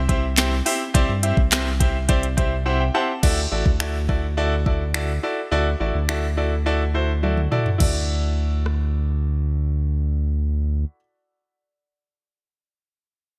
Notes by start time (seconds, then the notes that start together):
Already playing: C2
0.09 C4 E4 G4 C5 E5, kick, closed hi-hat
0.37 C4 E4 G4 C5 G5, snare, clap, closed hi-hat
0.66 C4 E4 G4 C5 E5, open hi-hat
0.94 C2 C4 E4 G4 C5 D5, kick, closed hi-hat
1.09 G2
1.23 C4 E4 G4 C5 E5, closed hi-hat
1.37 C2, kick
1.51 C4 E4 G4 C5 E5, snare, clap, closed hi-hat
1.80 C4 E4 G4 C5 E5, kick, closed hi-hat
2.08 C4 E4 G4 C5 D5, kick, closed hi-hat
2.23 closed hi-hat
2.37 C4 E4 G4 C5 E5, kick, closed hi-hat
2.66 C4 E4 G4 C5 E5 F#5
2.80 G5
2.94 C4 E4 G4 C5 F#5 A5
3.23 D2 E4 F#4 A4 D5, kick, crash
3.51 A1 E4 F#4 A4 D5
3.66 D2, kick
3.80 E4 F#4 A4 D5, finger snap
4.09 E4 F#4 A4 D5, kick
4.37 E4 F#4 A4 D5
4.66 E4 F#4 A4 D5, kick
4.94 E4 F#4 A4 D5, finger snap
5.23 E4 F#4 A4 D5
5.51 D2 E4 F#4 A4 D5
5.80 A1 E4 F#4 A4 D5
5.95 D2
6.09 E4 F#4 A4 D5, finger snap
6.37 E4 F#4 A4 D5
6.66 E4 F#4 A4 D5
6.94 E4 F#4 A4 C5
7.23 E4 F#4 A4 D5, high tom
7.38 mid tom
7.51 E4 F#4 A4 D5, mid tom
7.66 floor tom
7.78 D2 E4 F#4 A4, kick, crash
7.82 D5
8.66 cross-stick